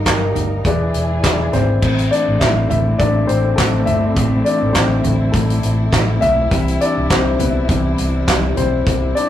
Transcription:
0.00 0.32 G2 medium
0.00 0.61 G3 medium
0.00 0.07 D#4 medium
0.00 0.63 D#4 medium
0.00 0.07 G4 medium
0.00 0.07 A#4 medium
0.00 0.63 A#4 medium
0.00 0.07 D#5 medium
0.06 0.30 G1 medium
0.06 0.54 D#4 medium
0.06 0.54 G4 medium
0.06 0.54 A#4 medium
0.06 0.54 D#5 medium
0.06 kick medium
0.06 snare medium
0.06 clap medium
0.06 closed hi-hat medium
0.35 0.59 G1 medium
0.35 closed hi-hat medium
0.35 floor tom medium
0.64 0.89 E1 medium
0.64 1.81 E3 medium
0.64 1.49 E3 medium
0.64 1.81 D4 medium
0.64 1.12 E4 medium
0.64 1.81 G#4 medium
0.64 1.13 G#4 medium
0.64 1.12 B4 medium
0.64 1.13 D5 medium
0.64 kick medium
0.64 closed hi-hat medium
0.94 1.18 E1 medium
0.94 closed hi-hat medium
1.23 1.48 E1 medium
1.23 1.71 E4 medium
1.23 1.71 G#4 medium
1.23 1.71 B4 medium
1.23 1.52 D5 medium
1.23 1.51 B5 medium
1.23 kick medium
1.23 snare medium
1.23 clap medium
1.23 closed hi-hat medium
1.53 1.77 G#1 medium
1.53 1.81 C4 medium
1.53 2.13 C5 medium
1.53 1.80 D5 medium
1.53 snare soft
1.53 closed hi-hat medium
1.53 floor tom medium
1.80 2.06 A1 medium
1.80 2.66 E3 soft
1.80 6.47 A3 medium
1.80 2.66 A3 soft
1.80 6.47 C4 medium
1.80 2.66 C4 medium
1.80 9.29 E4 medium
1.80 kick loud
1.80 crash medium
1.99 closed hi-hat soft
2.11 2.18 D4 medium
2.11 2.18 D5 medium
2.11 closed hi-hat medium
2.28 2.39 A1 medium
2.40 2.65 A1 medium
2.40 2.68 E4 medium
2.40 2.68 E5 medium
2.40 kick medium
2.40 snare medium
2.40 clap medium
2.40 closed hi-hat medium
2.69 2.94 A1 medium
2.69 2.77 E4 medium
2.69 2.76 E5 medium
2.69 closed hi-hat medium
2.69 floor tom medium
2.98 3.24 A1 medium
2.98 3.27 D4 medium
2.98 3.29 D5 medium
2.98 kick loud
2.98 closed hi-hat medium
3.27 3.53 A1 medium
3.27 3.56 C4 medium
3.27 3.58 C5 medium
3.27 closed hi-hat medium
3.56 3.65 A3 medium
3.56 3.63 A4 medium
3.56 kick medium
3.56 snare loud
3.56 clap medium
3.56 closed hi-hat medium
3.86 4.12 G1 medium
3.86 4.42 E4 medium
3.86 4.47 E5 loud
3.86 closed hi-hat medium
3.86 floor tom medium
4.15 4.41 A1 medium
4.15 6.47 E3 soft
4.15 5.32 A3 soft
4.15 4.74 C4 medium
4.15 kick loud
4.15 closed hi-hat medium
4.45 4.74 D4 medium
4.45 4.76 D5 medium
4.45 closed hi-hat medium
4.62 4.73 A1 medium
4.73 4.99 A1 medium
4.73 5.30 C4 medium
4.73 5.35 C5 medium
4.73 kick medium
4.73 snare medium
4.73 clap medium
4.73 closed hi-hat medium
5.04 5.29 A1 medium
5.04 closed hi-hat medium
5.04 floor tom medium
5.32 5.58 A1 loud
5.32 5.89 A3 medium
5.32 5.88 A4 medium
5.32 kick loud
5.32 closed hi-hat medium
5.50 closed hi-hat medium
5.63 5.88 A1 medium
5.63 closed hi-hat medium
5.93 kick medium
5.93 snare loud
5.93 clap medium
5.93 closed hi-hat medium
6.21 6.46 B1 medium
6.21 6.77 E4 medium
6.21 6.82 E5 loud
6.21 closed hi-hat medium
6.21 floor tom medium
6.50 6.76 C2 medium
6.50 9.29 C3 medium
6.50 7.36 E3 soft
6.50 9.29 G3 medium
6.50 7.36 G3 soft
6.50 7.11 C4 medium
6.50 kick loud
6.50 closed hi-hat medium
6.68 closed hi-hat soft
6.81 7.09 D4 medium
6.81 7.11 D5 medium
6.81 closed hi-hat medium
6.97 7.08 C2 medium
7.10 7.34 C2 medium
7.10 7.39 C4 medium
7.10 7.41 C5 medium
7.10 kick medium
7.10 snare medium
7.10 clap medium
7.10 closed hi-hat medium
7.39 7.64 C2 medium
7.39 8.24 B3 medium
7.39 8.24 B4 medium
7.39 closed hi-hat medium
7.39 floor tom medium
7.69 7.93 C2 loud
7.69 7.95 E3 soft
7.69 7.96 G3 soft
7.69 7.96 C4 medium
7.69 kick loud
7.69 closed hi-hat medium
7.98 8.23 C2 medium
7.98 closed hi-hat medium
8.28 8.52 C2 medium
8.28 kick medium
8.28 snare loud
8.28 clap medium
8.28 closed hi-hat medium
8.57 8.82 B1 medium
8.57 9.13 C4 medium
8.57 9.18 C5 medium
8.57 closed hi-hat medium
8.57 floor tom medium
8.87 9.11 C2 medium
8.87 kick loud
8.87 closed hi-hat medium
9.15 9.23 D4 medium
9.15 9.22 D5 medium
9.15 closed hi-hat medium

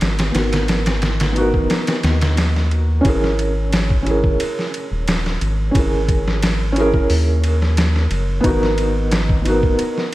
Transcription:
0.00 0.31 G#1 medium
0.00 0.30 B3 medium
0.00 0.31 D#4 medium
0.00 0.32 F#4 medium
0.00 0.33 A#4 medium
0.00 snare medium
0.00 ride medium
0.19 snare loud
0.19 ride medium
0.32 1.67 G#1 medium
0.32 1.31 B3 medium
0.32 1.32 D#4 medium
0.32 snare loud
0.32 ride medium
0.37 1.33 F#4 medium
0.37 1.35 A#4 medium
0.53 snare loud
0.53 ride medium
0.68 snare loud
0.68 ride medium
0.86 snare loud
0.86 ride medium
1.02 snare loud
1.02 ride medium
1.20 snare loud
1.20 ride medium
1.32 2.99 B3 medium
1.32 3.00 D#4 medium
1.32 ride medium
1.38 3.02 F#4 medium
1.38 3.03 A#4 loud
1.54 kick medium
1.70 snare loud
1.70 ride medium
1.87 snare loud
1.87 ride medium
2.03 3.02 D#2 medium
2.03 snare loud
2.03 ride medium
2.21 snare loud
2.21 ride medium
2.37 snare loud
2.37 ride medium
2.56 snare medium
2.71 ride medium
3.01 4.37 G#1 medium
3.01 4.00 C#4 medium
3.01 4.02 E4 medium
3.01 kick loud
3.01 ride medium
3.06 4.03 G#4 medium
3.06 4.04 A#4 loud
3.24 snare soft
3.39 ride medium
3.73 snare loud
3.73 ride medium
3.90 kick loud
4.03 5.69 C#4 medium
4.03 5.70 E4 medium
4.03 ride medium
4.08 5.72 G#4 medium
4.08 5.73 A#4 medium
4.24 kick medium
4.40 ride medium
4.59 snare soft
4.74 ride medium
4.92 5.38 D#1 medium
5.08 snare loud
5.08 ride medium
5.26 snare medium
5.41 5.71 G#1 medium
5.41 ride medium
5.71 7.06 G#1 medium
5.71 6.70 C#4 medium
5.71 6.72 E4 medium
5.71 kick loud
5.71 ride medium
5.77 6.73 G#4 medium
5.77 6.74 A#4 medium
6.08 kick medium
6.08 ride medium
6.28 snare medium
6.43 snare loud
6.43 ride medium
6.72 8.39 C#4 loud
6.72 8.40 E4 medium
6.72 ride medium
6.78 8.41 G#4 medium
6.78 8.43 A#4 loud
6.94 kick medium
7.10 8.08 D#2 medium
7.10 open hi-hat medium
7.44 ride medium
7.62 snare soft
7.77 snare loud
7.77 ride medium
7.96 snare medium
8.11 8.41 F#1 loud
8.11 ride medium
8.41 9.76 G#1 medium
8.41 9.40 B3 loud
8.41 9.41 D#4 medium
8.41 kick loud
8.41 ride medium
8.46 9.42 F#4 medium
8.46 9.44 A#4 loud
8.63 snare soft
8.78 ride medium
9.11 snare loud
9.11 ride medium
9.29 kick medium
9.42 10.14 B3 medium
9.42 10.14 D#4 medium
9.42 ride medium
9.47 10.14 F#4 medium
9.47 10.14 A#4 medium
9.63 kick loud
9.79 ride medium
9.98 snare soft

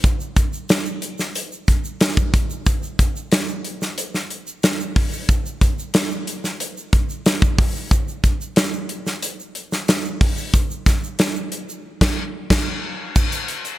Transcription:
0.04 kick loud
0.04 closed hi-hat medium
0.04 shaker medium
0.20 shaker soft
0.36 kick medium
0.36 closed hi-hat medium
0.36 shaker medium
0.53 shaker soft
0.69 snare loud
0.69 closed hi-hat medium
0.69 shaker medium
0.85 shaker soft
1.02 closed hi-hat medium
1.02 shaker soft
1.18 snare soft
1.18 shaker soft
1.35 closed hi-hat medium
1.35 shaker medium
1.52 shaker soft
1.68 kick medium
1.68 closed hi-hat medium
1.68 shaker medium
1.85 shaker soft
2.01 snare loud
2.01 closed hi-hat medium
2.01 shaker medium
2.17 kick loud
2.17 shaker soft
2.34 kick loud
2.34 closed hi-hat medium
2.50 shaker soft
2.66 kick loud
2.66 closed hi-hat medium
2.66 shaker medium
2.83 shaker soft
2.99 kick medium
2.99 closed hi-hat medium
2.99 shaker medium
3.16 shaker soft
3.32 snare loud
3.32 closed hi-hat medium
3.32 shaker medium
3.48 shaker soft
3.64 closed hi-hat medium
3.82 snare soft
3.82 shaker soft
3.98 closed hi-hat medium
3.98 shaker medium
4.14 snare soft
4.14 shaker soft
4.30 closed hi-hat medium
4.47 shaker soft
4.63 snare medium
4.63 closed hi-hat medium
4.63 shaker medium
4.80 shaker soft
4.96 kick medium
4.96 open hi-hat medium
5.13 shaker medium
5.29 kick medium
5.29 closed hi-hat medium
5.29 shaker medium
5.46 shaker soft
5.61 kick medium
5.61 closed hi-hat medium
5.61 shaker medium
5.79 shaker soft
5.94 snare loud
5.94 closed hi-hat medium
5.94 shaker medium
6.11 shaker soft
6.27 closed hi-hat medium
6.44 snare soft
6.44 shaker soft
6.60 closed hi-hat medium
6.60 shaker medium
6.77 shaker soft
6.93 kick medium
6.93 closed hi-hat medium
7.10 shaker soft
7.26 snare loud
7.26 closed hi-hat medium
7.26 shaker medium
7.42 kick loud
7.42 shaker soft
7.58 kick loud
7.58 open hi-hat medium
7.76 shaker soft
7.91 kick medium
7.91 closed hi-hat medium
7.91 shaker medium
8.08 shaker soft
8.24 kick medium
8.24 closed hi-hat medium
8.24 shaker medium
8.41 shaker soft
8.56 snare loud
8.56 closed hi-hat medium
8.56 shaker medium
8.73 shaker soft
8.89 closed hi-hat medium
9.06 snare soft
9.06 shaker soft
9.23 closed hi-hat medium
9.23 shaker medium
9.40 shaker soft
9.55 closed hi-hat soft
9.72 snare soft
9.72 shaker soft
9.88 snare loud
9.88 closed hi-hat medium
9.88 shaker medium
10.05 shaker soft
10.21 kick loud
10.21 open hi-hat medium
10.37 shaker soft
10.54 kick medium
10.54 closed hi-hat medium
10.54 shaker medium
10.71 shaker soft
10.86 kick medium
10.86 snare soft
10.86 closed hi-hat medium
10.86 shaker medium
11.03 shaker soft
11.19 snare loud
11.19 closed hi-hat medium
11.19 shaker medium
11.36 shaker soft
11.52 closed hi-hat medium
11.52 shaker soft
11.69 shaker soft
12.01 kick medium
12.01 snare loud
12.01 crash medium
12.50 kick medium
12.50 snare loud
12.50 crash medium
13.16 kick loud
13.16 crash medium
13.16 shaker medium
13.32 closed hi-hat medium
13.32 shaker soft
13.48 closed hi-hat medium
13.65 closed hi-hat soft
13.65 shaker soft

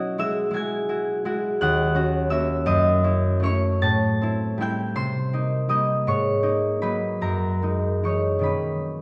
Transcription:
0.00 1.62 B2 medium
0.00 2.99 F#3 soft
0.00 0.18 E4 medium
0.00 0.19 F#4 medium
0.00 2.65 D#5 medium
0.00 0.18 E5 medium
0.00 1.16 F#5 medium
0.00 0.67 D#6 medium
0.00 1.14 F#6 medium
0.18 0.50 G#3 medium
0.18 0.52 E4 soft
0.18 0.53 F#4 medium
0.18 1.63 E5 medium
0.18 1.63 E6 medium
0.51 1.24 G#3 medium
0.51 0.88 E4 medium
0.51 0.88 F#4 medium
0.51 1.62 G#5 medium
0.56 1.62 G#6 medium
0.89 1.25 E4 medium
0.89 1.24 F#4 medium
1.25 1.62 G#3 medium
1.25 1.63 E4 medium
1.25 1.95 F#4 medium
1.61 2.70 D#2 medium
1.61 3.88 F#5 medium
1.61 3.87 F#6 loud
1.95 2.30 C#4 medium
1.95 2.30 F#4 medium
2.30 2.69 A#3 soft
2.30 3.03 C#4 medium
2.30 3.86 F#4 medium
2.30 4.99 E5 medium
2.30 2.92 E6 medium
2.66 3.86 F#2 medium
2.66 3.86 D#5 medium
2.66 3.98 D#6 medium
3.04 3.42 C#4 soft
3.04 3.41 E4 medium
3.40 4.97 A3 soft
3.40 3.86 C#4 soft
3.40 4.22 E4 soft
3.40 3.86 C#5 medium
3.46 3.86 C#6 medium
3.82 4.97 A2 medium
3.82 4.98 A5 medium
3.82 4.97 A6 loud
4.22 4.59 C4 soft
4.22 4.59 E4 medium
4.58 5.68 G3 soft
4.58 6.08 C4 soft
4.58 4.99 E4 soft
4.58 6.08 G5 medium
4.62 6.08 G6 medium
4.95 6.07 C3 medium
4.95 6.08 C5 medium
4.95 6.07 C6 medium
5.33 5.69 A#3 soft
5.33 5.69 D#4 soft
5.69 6.08 G3 soft
5.69 6.42 A#3 soft
5.69 6.42 D#4 soft
5.69 9.02 D#5 medium
5.69 9.02 D#6 medium
6.07 7.25 G#2 medium
6.07 8.04 C#5 medium
6.07 7.38 C#6 medium
6.43 6.81 A#3 soft
6.43 6.81 D#4 medium
6.82 9.02 F#3 soft
6.82 8.40 A#3 soft
6.82 7.62 D#4 soft
6.82 7.25 B4 medium
6.82 7.24 B5 medium
7.21 8.48 F#2 medium
7.21 9.02 A#4 soft
7.21 9.02 A#5 medium
7.62 8.03 G#3 soft
7.62 8.04 D#4 soft
8.03 8.48 E3 soft
8.03 8.49 G#3 soft
8.03 9.02 D#4 soft
8.03 9.02 C#5 soft
8.03 9.02 C#6 medium
8.39 9.02 B2 soft
8.39 9.02 D#3 soft
8.39 9.02 A#3 soft
8.39 9.02 C#4 soft
8.43 9.02 B4 soft
8.43 9.02 B5 medium

